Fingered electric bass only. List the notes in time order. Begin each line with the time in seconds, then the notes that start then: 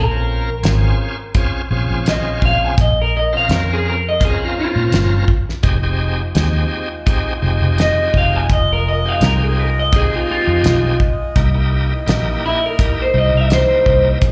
Already playing: A#1
0.63 G#1
1.71 A#1
1.90 A#1
2.42 A#1
2.78 A#1
3.49 F2
4.76 A#2
4.92 G1
5.64 F1
6.35 D#2
7.42 F1
7.62 F1
8.14 F1
8.50 F1
9.21 C2
10.47 F2
10.63 B1
11.36 C2
12.07 A#1
13.14 C2
13.34 C2
13.86 C2
14.22 A#1